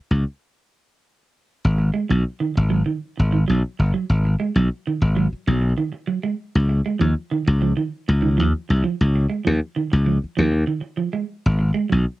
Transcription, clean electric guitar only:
1.78 muted clean electric guitar stroke
1.94 G#3
2.09 F#3
2.40 D#3
2.56 muted clean electric guitar stroke
2.70 F#3
2.86 D#3
3.17 muted clean electric guitar stroke
3.32 D#3
3.48 F#3
3.79 muted clean electric guitar stroke
3.94 F#3
4.25 muted clean electric guitar stroke
4.40 G#3
4.56 F#3
4.87 D#3
5.02 muted clean electric guitar stroke
5.16 F#3
5.47 F#3
5.62 muted clean electric guitar stroke
5.78 D#3
5.92 muted clean electric guitar stroke
6.07 F#3
6.23 G#3
6.69 muted clean electric guitar stroke
6.86 G#3
6.99 F3
7.31 D#3
7.47 muted clean electric guitar stroke
7.62 F3
7.77 D#3
8.08 muted clean electric guitar stroke
8.22 D#3
8.38 F3
8.69 muted clean electric guitar stroke
8.84 F3
9.16 muted clean electric guitar stroke
9.30 G#3
9.45 F3
9.76 D#3
9.92 muted clean electric guitar stroke
10.06 F3
10.37 F3
10.52 muted clean electric guitar stroke
10.67 D#3
10.81 muted clean electric guitar stroke
10.97 F3
11.13 G#3
11.59 muted clean electric guitar stroke
11.74 G#3
11.90 F#3

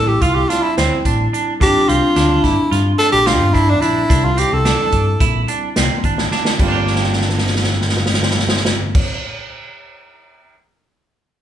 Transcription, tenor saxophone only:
0.07 G4
0.22 F4
0.35 G4
0.49 F4
0.63 E4
0.77 C4
1.62 G4
1.89 F4
2.44 E4
2.98 A4
3.12 G4
3.27 F4
3.54 E4
3.69 D4
3.81 E4
4.24 F4
4.39 G4
4.53 A4

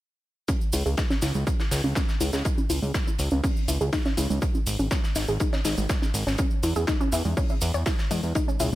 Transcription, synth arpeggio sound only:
0.48 C#4
0.73 E4
0.86 G#4
0.98 D#4
1.10 C#4
1.22 E4
1.35 G#3
1.47 C#5
1.60 C#4
1.84 C#4
1.96 C#4
2.21 E4
2.33 G#4
2.45 D#4
2.58 C#4
2.70 E4
2.82 G#3
2.94 C#5
3.07 C#4
3.32 C#4
3.44 C#4
3.68 E4
3.81 G#4
3.93 D#4
4.06 C#4
4.17 E4
4.30 G#3
4.42 C#5
4.55 C#4
4.79 C#4
4.91 C#4
5.16 D#4
5.29 G#4
5.41 D#4
5.53 C#4
5.65 D#4
5.78 G#3
5.90 C#5
6.02 C#4
6.27 C#4
6.39 C#4
6.63 E4
6.76 G#4
6.88 D#4
7.01 C#4
7.13 E4
7.25 G#3
7.37 C#5
7.50 C#4
7.74 C#5
7.86 E4
8.11 G#3
8.23 G#3
8.35 D#4
8.48 C#4
8.60 E4

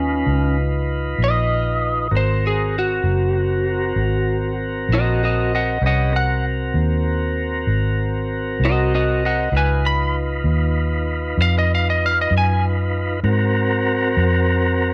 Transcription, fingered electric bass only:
Already playing: D#2
0.26 C#2
1.18 A#1
2.11 G#1
3.03 F#1
3.96 G#1
4.89 A#1
5.82 C2
6.74 D#2
7.67 G#1
8.60 C2
9.52 C#2
10.44 D#2
11.37 F2
12.31 F#2
13.24 G#2
14.17 F2

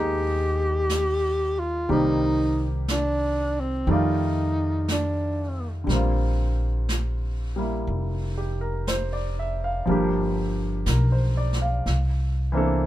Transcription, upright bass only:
Already playing: D#2
1.89 C2
3.87 F2
5.87 A#1
7.87 F1
9.87 G1
10.86 B1
11.86 C2

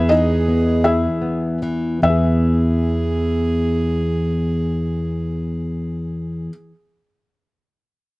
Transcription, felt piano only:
Already playing: E5
0.09 D#4 G#4 D#5
0.84 E4 G#4 E5
2.03 E5

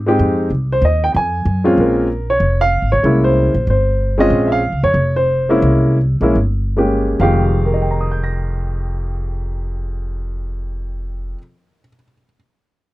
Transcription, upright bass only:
Already playing: G#2
0.19 F2
0.50 C2
0.82 D#2
1.14 F2
1.45 F#2
1.78 A#1
2.40 F1
2.82 G#1
2.93 A#1
3.04 C2
3.54 A#1
3.67 G1
4.30 A#1
4.72 C#2
4.83 F2
4.94 F1
5.62 C2
6.21 A#1
6.35 G1
7.20 F1

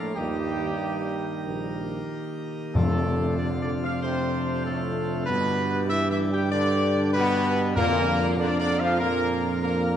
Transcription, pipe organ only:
Already playing: F3 A#3 D4 F4
0.15 D#3 D#4 G4
2.75 C3 A3 D4 F4
5.29 D3 G3 G4
7.77 F3 A#3 D4 F4

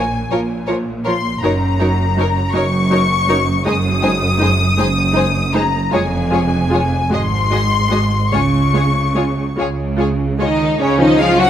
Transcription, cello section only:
Already playing: A#2
0.31 A#2
1.43 F#2
2.55 F#2
3.65 F#2
4.77 F#2
5.93 F2
7.11 G#2
8.32 C#3
9.58 C#3
10.40 D#3
10.80 C#3
11.00 D#3
11.18 F3
11.37 F#3

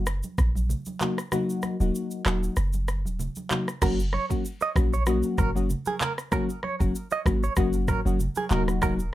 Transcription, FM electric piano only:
1.01 F#3 A#3 D#4 F#4
1.32 F#3 A#3 D#4 F#4
1.80 F#3 A#3 D#4 F#4
2.25 F#3 A#3 D#4 F#4
3.50 F#3 A#3 D#4 F#4
3.82 F#3 A#3 C#4 F#4
4.30 F#3 A#3 C#4 F#4
4.75 F#3 A#3 C#4 F#4
5.07 F#3 A#3 C#4 F#4
5.55 F#3 A#3 C#4 F#4
6.32 F#3 A#3 C#4 F#4
6.80 F#3 A#3 C#4 F#4
7.25 F#3 A#3 C#4 F#4
7.57 F#3 A#3 C#4 F#4
8.05 F#3 A#3 C#4 F#4
8.51 F#3 A#3 D#4 F#4
8.82 F#3 A#3 D#4 F#4

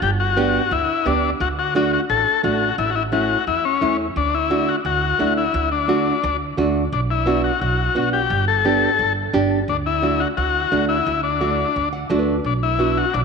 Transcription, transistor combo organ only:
0.03 G4
0.20 F#4
0.72 E4
1.07 D4
1.41 F#4
1.59 F#4
1.76 F#4
1.93 F#4
2.10 A4
2.44 F#4
2.78 E4
2.90 F#4
2.95 E4
3.13 F#4
3.48 E4
3.65 C#4
4.17 D4
4.34 E4
4.69 F#4
4.86 F#4
5.38 E4
5.72 D4
6.93 D4
7.11 E4
7.44 F#4
7.61 F#4
8.13 G4
8.48 A4
9.69 D4
9.86 E4
10.20 F#4
10.37 F#4
10.89 E4
11.23 D4
12.46 D4
12.63 E4
12.97 F#4
13.14 D4

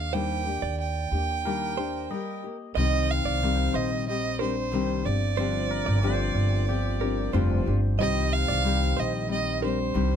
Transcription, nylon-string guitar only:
Already playing: A#3 D4 G4
0.13 D#3 G3 A#3 D4 G4
0.45 A#3 D4 G4
1.12 A#3 D4 G4
1.45 D#3 G3 A#3 D4 G4
1.77 A#3 D4 G4
2.10 G3 A#3 G4
2.44 A#3 G4
2.77 C3 D#3 G3 C4 G4
3.42 C3 D#3 G3 C4 G4
4.07 G3 C4 G4
4.40 G3 C4 D4 G4
4.72 C3 D#3 G3 C4 D4 G4
5.03 F3 C4 D4 G4
5.37 G2 D3 F3 C4 D4 G4
6.02 G2 D3 F3 C4 D4 G4
6.67 F3 C4 D4 G4
7.00 F3 C4 D4 G4
7.32 G2 D3 F3 C4 D4 G4
7.66 F3 C4 D4 G4
7.98 C3 D#3 G3 C4 G4
8.64 C3 D#3 G3 C4 G4
9.28 G3 C4 G4
9.62 G3 C4 D4 G4
9.94 C3 D#3 G3 C4 D4 G4

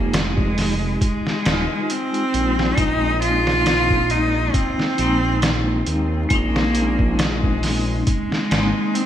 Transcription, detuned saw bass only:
Already playing: F1
1.46 D#1
2.34 A#1
2.78 A#1
4.98 A#1
5.87 D#2
6.31 A#1
8.51 G#1

